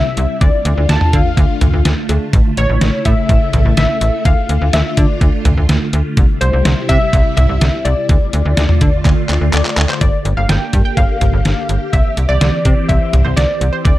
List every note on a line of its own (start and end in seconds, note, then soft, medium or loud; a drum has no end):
0.00 0.40 C3 medium
0.00 0.39 G3 medium
0.00 0.39 E4 medium
0.00 0.43 E5 loud
0.17 0.26 C2 loud
0.17 closed hi-hat medium
0.41 0.50 D2 loud
0.41 2.31 D3 medium
0.41 6.13 A3 medium
0.41 2.31 F4 medium
0.41 0.91 D5 loud
0.41 kick loud
0.41 closed hi-hat medium
0.65 0.74 D2 loud
0.65 closed hi-hat medium
0.77 0.86 D2 loud
0.89 0.98 D2 loud
0.89 1.14 A5 loud
0.89 snare loud
0.89 closed hi-hat medium
1.01 mid tom loud
1.13 1.22 D3 loud
1.13 1.81 F5 loud
1.13 kick loud
1.13 closed hi-hat medium
1.37 1.46 D2 loud
1.37 kick medium
1.37 closed hi-hat medium
1.61 1.70 D2 medium
1.61 closed hi-hat medium
1.61 mid tom medium
1.73 1.82 D2 medium
1.85 1.94 D2 loud
1.85 snare loud
1.85 closed hi-hat medium
2.09 2.18 D2 loud
2.09 closed hi-hat medium
2.09 cowbell medium
2.33 2.42 A1 loud
2.33 4.23 C#3 medium
2.33 4.23 E4 medium
2.33 kick loud
2.33 closed hi-hat medium
2.57 2.66 A1 loud
2.57 3.07 C#5 medium
2.57 closed hi-hat medium
2.69 2.78 A1 loud
2.81 2.90 A1 loud
2.81 snare loud
2.81 closed hi-hat medium
3.05 3.14 A2 loud
3.05 3.76 E5 loud
3.05 kick loud
3.05 closed hi-hat medium
3.29 3.38 A1 loud
3.29 kick medium
3.29 closed hi-hat medium
3.53 3.62 A1 loud
3.53 closed hi-hat medium
3.53 mid tom medium
3.65 3.74 A1 loud
3.77 3.86 A1 loud
3.77 4.27 E5 loud
3.77 snare loud
3.77 closed hi-hat medium
4.01 4.10 A1 medium
4.01 closed hi-hat medium
4.25 4.34 D2 loud
4.25 6.15 D3 medium
4.25 6.15 F4 medium
4.25 4.75 F5 loud
4.25 kick loud
4.25 closed hi-hat medium
4.49 4.58 D2 loud
4.49 closed hi-hat medium
4.61 4.70 D2 loud
4.73 4.82 D2 loud
4.73 4.98 E5 loud
4.73 snare loud
4.73 closed hi-hat medium
4.97 5.06 D3 medium
4.97 5.65 D5 medium
4.97 kick medium
4.97 closed hi-hat medium
5.21 5.30 D2 loud
5.21 kick medium
5.21 closed hi-hat medium
5.45 5.54 D2 loud
5.45 closed hi-hat medium
5.45 mid tom medium
5.57 5.66 D2 loud
5.69 5.78 D2 loud
5.69 snare loud
5.69 closed hi-hat medium
5.93 6.02 D2 loud
5.93 closed hi-hat medium
6.17 6.26 C2 loud
6.17 8.07 C3 medium
6.17 8.07 G3 medium
6.17 8.07 E4 medium
6.17 kick loud
6.17 closed hi-hat medium
6.41 6.50 C2 medium
6.41 6.86 C5 loud
6.41 closed hi-hat medium
6.53 6.62 C2 medium
6.65 6.74 C2 loud
6.65 snare loud
6.65 closed hi-hat medium
6.89 6.98 C3 loud
6.89 7.36 E5 loud
6.89 kick loud
6.89 closed hi-hat medium
7.13 7.22 C2 loud
7.13 kick medium
7.13 closed hi-hat medium
7.37 7.46 C2 medium
7.37 7.86 E5 loud
7.37 closed hi-hat medium
7.37 mid tom medium
7.49 7.58 C2 medium
7.61 7.70 C2 loud
7.61 snare loud
7.61 closed hi-hat medium
7.85 7.94 C2 loud
7.85 9.49 D5 loud
7.85 closed hi-hat medium
8.09 8.18 D2 loud
8.09 10.00 D3 medium
8.09 10.00 A3 medium
8.09 9.99 F4 medium
8.09 kick loud
8.09 closed hi-hat medium
8.33 8.42 D2 loud
8.33 closed hi-hat medium
8.45 8.54 D2 loud
8.57 8.66 D2 loud
8.57 snare loud
8.57 closed hi-hat medium
8.69 mid tom loud
8.81 8.90 D3 loud
8.81 kick loud
8.81 closed hi-hat medium
9.05 9.14 D2 loud
9.05 kick medium
9.05 clap medium
9.05 closed hi-hat medium
9.29 9.38 D2 loud
9.29 clap medium
9.29 closed hi-hat medium
9.41 9.50 D2 medium
9.53 9.62 D2 loud
9.53 9.90 D5 medium
9.53 clap medium
9.53 closed hi-hat medium
9.65 clap medium
9.77 9.86 D2 loud
9.77 clap loud
9.77 closed hi-hat medium
9.89 10.02 C5 medium
9.89 clap medium
10.01 10.10 G1 loud
10.01 11.91 D3 medium
10.01 11.91 A#3 medium
10.01 13.81 G4 medium
10.01 10.35 D5 medium
10.01 kick loud
10.01 closed hi-hat medium
10.25 10.34 G1 loud
10.25 closed hi-hat medium
10.37 10.46 G1 loud
10.37 10.49 F5 medium
10.49 10.58 G1 loud
10.49 10.84 G5 medium
10.49 snare loud
10.49 closed hi-hat medium
10.73 10.82 G2 loud
10.73 kick medium
10.73 closed hi-hat medium
10.85 10.98 G5 medium
10.97 11.06 G1 loud
10.97 11.96 F5 loud
10.97 kick medium
10.97 closed hi-hat medium
11.21 11.30 G1 medium
11.21 closed hi-hat medium
11.21 mid tom medium
11.33 11.42 G1 medium
11.45 11.54 G1 loud
11.45 snare loud
11.45 closed hi-hat medium
11.69 11.78 G1 medium
11.69 closed hi-hat medium
11.93 12.02 C2 loud
11.93 13.83 E3 medium
11.93 13.83 C4 medium
11.93 12.30 E5 loud
11.93 kick loud
11.93 closed hi-hat medium
12.17 12.26 C2 medium
12.17 closed hi-hat medium
12.29 12.38 C2 medium
12.29 12.91 D5 medium
12.41 12.50 C2 loud
12.41 snare loud
12.41 closed hi-hat medium
12.65 12.74 C3 loud
12.65 kick medium
12.65 closed hi-hat medium
12.89 12.98 C2 loud
12.89 13.26 E5 loud
12.89 kick medium
12.89 closed hi-hat medium
13.13 13.22 C2 medium
13.13 closed hi-hat medium
13.13 mid tom medium
13.25 13.34 C2 medium
13.25 13.30 C5 medium
13.37 13.46 C2 loud
13.37 13.74 D5 medium
13.37 snare loud
13.37 closed hi-hat medium
13.61 13.70 C2 loud
13.61 closed hi-hat medium
13.73 13.78 C5 medium
13.85 13.94 D2 loud
13.85 13.99 D3 medium
13.85 13.99 A3 medium
13.85 13.99 F4 medium
13.85 13.99 D5 loud
13.85 kick loud
13.85 closed hi-hat medium